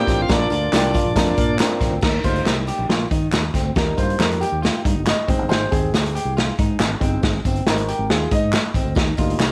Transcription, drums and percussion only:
0.07 kick medium
0.07 snare soft
0.07 closed hi-hat medium
0.07 tambourine soft
0.28 kick loud
0.28 snare loud
0.28 closed hi-hat medium
0.28 tambourine medium
0.50 closed hi-hat medium
0.50 tambourine medium
0.73 snare loud
0.73 clap medium
0.73 closed hi-hat medium
0.73 tambourine medium
0.94 kick medium
0.94 closed hi-hat medium
0.94 tambourine medium
1.16 kick medium
1.16 snare loud
1.16 closed hi-hat loud
1.16 tambourine soft
1.37 kick loud
1.37 closed hi-hat medium
1.37 tambourine soft
1.59 snare loud
1.59 clap medium
1.59 closed hi-hat loud
1.59 tambourine medium
1.81 kick medium
1.81 snare soft
1.81 closed hi-hat medium
1.81 tambourine soft
2.01 kick loud
2.01 snare loud
2.01 crash medium
2.01 tambourine medium
2.24 kick medium
2.24 closed hi-hat medium
2.24 tambourine medium
2.36 closed hi-hat soft
2.46 snare loud
2.46 clap medium
2.46 tambourine medium
2.67 closed hi-hat medium
2.67 tambourine soft
2.90 snare loud
3.11 kick loud
3.11 closed hi-hat medium
3.11 tambourine soft
3.32 snare loud
3.32 clap medium
3.32 tambourine medium
3.54 kick medium
3.54 snare soft
3.54 closed hi-hat medium
3.54 tambourine soft
3.76 kick loud
3.76 snare loud
3.76 tambourine soft
3.98 kick medium
3.98 closed hi-hat medium
3.98 tambourine soft
4.10 closed hi-hat soft
4.20 snare loud
4.20 clap medium
4.20 tambourine medium
4.32 closed hi-hat medium
4.41 closed hi-hat medium
4.41 tambourine soft
4.63 snare loud
4.63 tambourine soft
4.85 kick loud
4.85 closed hi-hat medium
4.85 tambourine soft
5.07 snare loud
5.07 clap medium
5.07 tambourine medium
5.28 kick loud
5.28 closed hi-hat medium
5.28 tambourine soft
5.49 snare loud
5.49 tambourine medium
5.72 kick medium
5.72 closed hi-hat medium
5.72 tambourine medium
5.94 snare loud
5.94 clap medium
5.94 tambourine medium
6.06 closed hi-hat medium
6.16 closed hi-hat medium
6.16 tambourine medium
6.37 snare loud
6.37 tambourine soft
6.59 kick loud
6.59 closed hi-hat medium
6.80 snare loud
6.80 clap medium
6.80 tambourine medium
7.01 kick medium
7.01 closed hi-hat medium
7.01 tambourine soft
7.23 kick loud
7.23 snare loud
7.23 tambourine medium
7.45 kick medium
7.45 closed hi-hat medium
7.45 tambourine medium
7.56 closed hi-hat medium
7.67 snare loud
7.67 clap medium
7.67 tambourine medium
7.78 closed hi-hat medium
7.88 closed hi-hat medium
7.88 tambourine medium
8.10 snare loud
8.31 kick medium
8.31 closed hi-hat medium
8.31 tambourine soft
8.53 snare loud
8.53 clap medium
8.53 tambourine medium
8.74 kick medium
8.74 closed hi-hat medium
8.74 tambourine soft
8.95 kick loud
8.95 snare loud
8.95 tambourine medium
9.17 kick medium
9.17 closed hi-hat medium
9.17 tambourine medium
9.30 closed hi-hat soft
9.40 snare loud
9.40 clap medium
9.40 tambourine medium

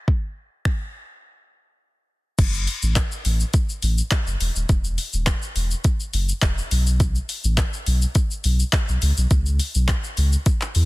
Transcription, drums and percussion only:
0.08 kick loud
0.65 finger snap loud
0.65 kick loud
2.39 kick loud
2.39 closed hi-hat medium
2.39 crash loud
2.39 shaker medium
2.54 shaker soft
2.67 open hi-hat medium
2.67 shaker medium
2.82 shaker medium
2.96 kick loud
2.96 clap loud
2.96 closed hi-hat medium
2.96 shaker medium
3.12 shaker medium
3.25 open hi-hat medium
3.25 shaker medium
3.40 shaker medium
3.54 kick loud
3.54 closed hi-hat medium
3.54 shaker medium
3.69 shaker medium
3.82 open hi-hat medium
3.82 shaker medium
3.98 shaker medium
4.11 kick loud
4.11 clap loud
4.11 closed hi-hat medium
4.11 shaker medium
4.27 shaker medium
4.41 open hi-hat medium
4.41 shaker medium
4.56 shaker medium
4.69 kick loud
4.69 closed hi-hat medium
4.69 shaker medium
4.84 shaker medium
4.98 open hi-hat medium
4.98 shaker medium
5.13 shaker medium
5.27 kick loud
5.27 clap loud
5.27 closed hi-hat medium
5.27 shaker medium
5.42 shaker medium
5.56 open hi-hat medium
5.56 shaker medium
5.71 shaker medium
5.84 kick loud
5.84 closed hi-hat medium
5.84 shaker medium
6.00 shaker medium
6.13 open hi-hat medium
6.13 shaker medium
6.29 shaker medium
6.42 kick loud
6.42 clap loud
6.42 closed hi-hat medium
6.42 shaker medium
6.58 shaker medium
6.71 open hi-hat medium
6.71 shaker medium
6.87 shaker medium
7.00 kick loud
7.00 closed hi-hat medium
7.00 shaker medium
7.15 shaker soft
7.29 open hi-hat medium
7.29 shaker medium
7.44 shaker medium
7.58 kick loud
7.58 clap loud
7.58 closed hi-hat medium
7.58 shaker medium
7.73 shaker medium
7.86 open hi-hat medium
7.86 shaker medium
8.02 shaker medium
8.15 kick loud
8.15 closed hi-hat medium
8.15 shaker medium
8.31 shaker medium
8.44 open hi-hat medium
8.44 shaker medium
8.60 shaker medium
8.73 kick loud
8.73 clap loud
8.73 closed hi-hat medium
8.73 shaker medium
8.88 shaker medium
9.02 open hi-hat medium
9.02 shaker medium
9.17 shaker medium
9.31 kick loud
9.31 closed hi-hat medium
9.31 shaker medium
9.46 shaker soft
9.59 open hi-hat medium
9.59 shaker medium
9.75 shaker medium
9.88 kick loud
9.88 clap loud
9.88 closed hi-hat medium
9.88 shaker medium
10.04 shaker medium
10.17 open hi-hat medium
10.17 shaker soft
10.32 shaker medium
10.46 kick loud
10.46 closed hi-hat medium
10.46 shaker medium
10.61 clap medium
10.61 shaker medium
10.75 open hi-hat medium
10.75 shaker medium

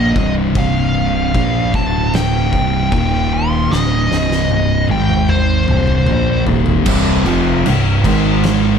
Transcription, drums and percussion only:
0.16 kick loud
0.55 kick loud
0.55 crash medium
1.35 kick loud
1.35 crash medium
1.74 kick loud
2.13 snare loud
2.13 crash medium
2.53 kick medium
2.92 kick loud
2.92 crash medium
3.72 snare medium
4.12 snare medium
4.31 snare medium
4.49 high tom medium
4.89 high tom medium
5.09 mid tom medium
5.29 mid tom medium
5.68 mid tom medium
5.87 mid tom medium
6.07 mid tom loud
6.47 floor tom loud
6.66 floor tom medium
6.86 kick loud
6.86 crash loud
6.86 crash medium
7.26 crash medium
7.66 crash medium
8.04 kick loud
8.04 crash loud
8.44 snare loud
8.44 crash medium

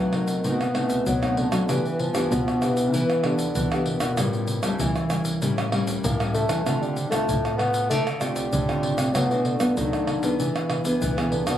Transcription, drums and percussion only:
0.13 pandeiro soft
0.13 tamborim medium
0.13 surdo soft
0.28 pandeiro medium
0.28 shaker medium
0.28 surdo soft
0.44 pandeiro medium
0.44 shaker medium
0.44 surdo soft
0.61 pandeiro soft
0.61 tamborim medium
0.61 shaker soft
0.75 pandeiro medium
0.75 tamborim medium
0.90 pandeiro medium
0.90 shaker medium
0.90 surdo soft
1.06 pandeiro medium
1.06 shaker medium
1.06 surdo medium
1.23 pandeiro soft
1.23 tamborim medium
1.23 shaker soft
1.37 pandeiro medium
1.52 pandeiro medium
1.52 tamborim medium
1.52 shaker medium
1.69 pandeiro medium
1.69 tamborim medium
1.69 shaker medium
1.69 surdo medium
1.85 pandeiro soft
1.85 shaker soft
1.99 pandeiro medium
2.15 pandeiro medium
2.15 tamborim medium
2.15 shaker medium
2.15 surdo soft
2.32 pandeiro medium
2.32 shaker medium
2.32 surdo medium
2.48 pandeiro soft
2.48 tamborim medium
2.48 shaker soft
2.62 pandeiro medium
2.62 tamborim medium
2.62 shaker medium
2.62 surdo soft
2.77 pandeiro medium
2.77 shaker medium
2.77 surdo soft
2.94 pandeiro medium
2.94 shaker medium
2.94 surdo medium
3.10 pandeiro soft
3.10 tamborim medium
3.10 shaker soft
3.24 pandeiro medium
3.24 tamborim medium
3.39 pandeiro medium
3.39 shaker medium
3.39 surdo soft
3.55 pandeiro medium
3.55 shaker medium
3.55 surdo medium
3.72 pandeiro soft
3.72 tamborim medium
3.72 shaker soft
3.86 pandeiro medium
4.00 pandeiro medium
4.00 tamborim medium
4.00 shaker medium
4.17 pandeiro medium
4.17 tamborim medium
4.17 shaker medium
4.17 surdo medium
4.33 pandeiro soft
4.33 shaker soft
4.47 pandeiro medium
4.47 shaker medium
4.63 pandeiro medium
4.63 tamborim medium
4.63 shaker medium
4.63 surdo soft
4.79 pandeiro medium
4.79 shaker medium
4.79 surdo medium
4.96 pandeiro soft
4.96 tamborim medium
4.96 shaker soft
5.10 pandeiro medium
5.10 tamborim medium
5.10 shaker medium
5.10 surdo soft
5.25 pandeiro medium
5.25 shaker medium
5.25 surdo soft
5.42 pandeiro medium
5.42 shaker medium
5.42 surdo medium
5.58 pandeiro soft
5.58 tamborim medium
5.58 shaker soft
5.72 pandeiro medium
5.72 tamborim medium
5.87 pandeiro medium
5.87 shaker medium
5.87 surdo soft
6.04 pandeiro medium
6.04 shaker medium
6.04 surdo medium
6.20 pandeiro soft
6.20 tamborim medium
6.20 shaker soft
6.34 pandeiro medium
6.34 shaker medium
6.49 pandeiro medium
6.49 tamborim medium
6.49 shaker medium
6.66 pandeiro medium
6.66 tamborim medium
6.66 shaker medium
6.66 surdo medium
6.83 pandeiro soft
6.83 shaker soft
6.96 pandeiro medium
6.96 shaker medium
7.12 pandeiro medium
7.12 tamborim medium
7.12 shaker medium
7.12 surdo soft
7.29 pandeiro medium
7.29 shaker medium
7.29 surdo medium
7.45 pandeiro soft
7.45 tamborim medium
7.45 shaker soft
7.59 pandeiro soft
7.59 tamborim medium
7.59 surdo soft
7.74 pandeiro medium
7.74 shaker medium
7.74 surdo soft
7.91 pandeiro medium
7.91 shaker medium
7.91 surdo soft
8.07 pandeiro soft
8.07 tamborim medium
8.07 shaker soft
8.21 pandeiro soft
8.21 tamborim medium
8.21 shaker medium
8.36 pandeiro medium
8.36 shaker medium
8.36 surdo soft
8.53 pandeiro medium
8.53 shaker medium
8.53 surdo loud
8.69 pandeiro soft
8.69 tamborim medium
8.69 shaker soft
8.83 pandeiro medium
8.83 surdo soft
8.98 pandeiro medium
8.98 tamborim medium
8.98 shaker medium
9.15 pandeiro medium
9.15 tamborim medium
9.15 shaker medium
9.15 surdo medium
9.31 pandeiro soft
9.31 shaker soft
9.45 pandeiro medium
9.60 pandeiro medium
9.60 tamborim medium
9.60 shaker medium
9.60 surdo soft
9.77 pandeiro medium
9.77 shaker medium
9.77 surdo medium
9.93 pandeiro soft
9.93 tamborim medium
9.93 shaker soft
10.07 pandeiro medium
10.07 tamborim medium
10.07 surdo soft
10.23 pandeiro medium
10.23 shaker medium
10.23 surdo soft
10.40 pandeiro medium
10.40 shaker medium
10.40 surdo soft
10.56 pandeiro soft
10.56 tamborim medium
10.56 shaker soft
10.70 pandeiro medium
10.70 tamborim medium
10.85 pandeiro medium
10.85 shaker medium
10.85 surdo soft
11.02 pandeiro medium
11.02 shaker medium
11.02 surdo medium
11.18 pandeiro soft
11.18 tamborim medium
11.18 shaker soft
11.32 pandeiro medium
11.47 pandeiro medium
11.47 tamborim medium
11.47 shaker medium

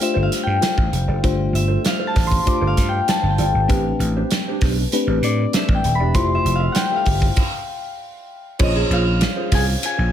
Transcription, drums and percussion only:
0.01 closed hi-hat medium
0.32 snare soft
0.32 closed hi-hat medium
0.62 snare loud
0.62 closed hi-hat medium
0.78 kick medium
0.93 closed hi-hat medium
1.24 kick loud
1.24 closed hi-hat medium
1.55 closed hi-hat medium
1.85 snare loud
1.85 closed hi-hat medium
2.16 kick medium
2.16 snare soft
2.16 open hi-hat medium
2.32 kick medium
2.47 kick medium
2.47 closed hi-hat loud
2.77 kick medium
2.77 snare soft
2.77 closed hi-hat medium
3.08 snare loud
3.08 closed hi-hat loud
3.38 closed hi-hat medium
3.70 kick loud
3.70 closed hi-hat medium
4.00 closed hi-hat medium
4.31 snare loud
4.31 closed hi-hat medium
4.61 kick medium
4.61 snare soft
4.61 open hi-hat medium
4.92 closed hi-hat loud
5.23 closed hi-hat medium
5.53 snare loud
5.53 closed hi-hat loud
5.69 kick medium
5.84 closed hi-hat medium
6.15 kick loud
6.15 closed hi-hat medium
6.46 closed hi-hat medium
6.75 snare loud
6.75 closed hi-hat medium
7.06 kick medium
7.06 open hi-hat medium
7.22 kick medium
7.36 kick loud
7.36 crash medium
8.59 kick loud
8.59 crash loud
8.91 ride medium
9.21 snare loud
9.21 ride medium
9.52 kick medium
9.52 snare soft
9.52 open hi-hat medium
9.52 ride medium
9.83 hi-hat pedal medium
9.83 ride medium

